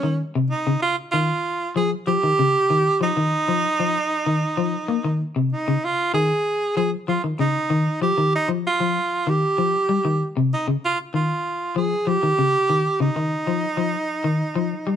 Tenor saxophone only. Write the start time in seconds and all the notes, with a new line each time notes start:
Already playing: C#4
0.50 D#4
0.82 F4
1.11 F4
1.77 G#4
2.07 G4
3.02 D#4
5.52 D#4
5.84 F4
6.14 G#4
6.77 G#4
7.09 F4
7.40 D#4
8.02 G4
8.36 D#4
8.67 F4
9.29 G4
10.53 D#4
10.85 F4
11.15 F4
11.77 G#4
12.08 G4
13.01 D#4